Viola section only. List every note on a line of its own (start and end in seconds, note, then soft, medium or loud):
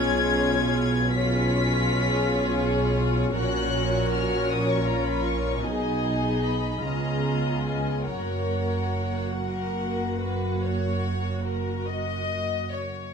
0.00 1.12 C#4 medium
0.00 1.11 F4 medium
1.16 3.33 C#4 medium
1.16 3.33 F4 medium
3.37 5.61 C#4 medium
3.37 4.88 F#4 medium
4.88 5.63 F4 medium
5.64 6.82 B3 medium
5.64 6.84 D#4 medium
6.84 8.05 B3 soft
6.84 8.07 F4 medium
8.07 12.93 A#3 soft
8.07 12.93 F#4 soft